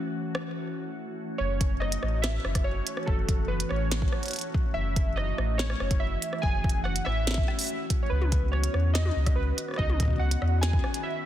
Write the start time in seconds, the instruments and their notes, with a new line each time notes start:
Already playing: ambient pad E3 A3 C#4 F#4
0.35 cross-stick
1.38 sub bass F#1, ambient pad E3 A3 C#4 F#4, synth keys C#5
1.61 kick, closed hi-hat
1.80 synth keys D#5, cross-stick
1.92 closed hi-hat
2.03 sub bass A1, cross-stick
2.22 synth keys E5, cross-stick, snare, closed hi-hat
2.45 sub bass F#1, cross-stick
2.55 kick, cross-stick, closed hi-hat
2.64 synth keys C#5
2.87 closed hi-hat
2.97 cross-stick
3.06 sub bass F#1, synth keys A4, kick
3.29 kick, closed hi-hat
3.48 synth keys B4
3.60 closed hi-hat
3.69 sub bass A1, synth keys C#5, cross-stick
3.92 snare, closed hi-hat
4.02 kick
4.12 cross-stick
4.23 closed hi-hat
4.26 closed hi-hat
4.28 closed hi-hat
4.31 closed hi-hat
4.33 closed hi-hat
4.36 closed hi-hat
4.39 closed hi-hat
4.41 closed hi-hat
4.54 kick
4.74 sub bass F#1, ambient pad F#4, synth keys E5
4.96 kick, closed hi-hat
5.16 synth keys D#5, cross-stick
5.38 sub bass A1, cross-stick
5.58 synth keys C#5, snare
5.70 cross-stick
5.80 sub bass F#1, cross-stick
5.91 kick, closed hi-hat
6.00 synth keys E5
6.22 closed hi-hat
6.33 cross-stick
6.42 sub bass F#1, synth keys G#5, kick
6.64 kick
6.69 closed hi-hat
6.84 synth keys F#5, cross-stick
6.96 closed hi-hat
7.05 sub bass A1, synth keys E5, cross-stick
7.27 snare, closed hi-hat
7.31 snare
7.34 kick, snare
7.48 cross-stick
7.59 open hi-hat
7.61 open hi-hat
7.64 open hi-hat
7.67 open hi-hat
7.90 kick, closed hi-hat
8.03 synth keys C#5
8.10 sub bass C#2, ambient pad D#3 B3, synth keys B4
8.22 high tom
8.32 kick, closed hi-hat
8.52 synth keys C#5, cross-stick
8.64 closed hi-hat
8.74 sub bass E2, cross-stick
8.94 synth keys D#5, cross-stick, snare, closed hi-hat
9.05 high tom
9.16 sub bass C#2
9.26 kick, cross-stick, closed hi-hat
9.36 synth keys B4
9.58 closed hi-hat
9.68 cross-stick
9.71 cross-stick
9.74 cross-stick
9.76 sub bass C#2, synth keys D#5, kick, cross-stick
9.89 high tom
10.00 kick, closed hi-hat
10.02 kick
10.05 kick
10.08 kick
10.10 kick
10.13 kick
10.16 kick
10.18 synth keys F#5, kick
10.31 closed hi-hat
10.42 sub bass E2, cross-stick
10.61 synth keys G#5, snare, closed hi-hat
10.73 kick
10.84 cross-stick
10.94 closed hi-hat
11.03 synth keys E5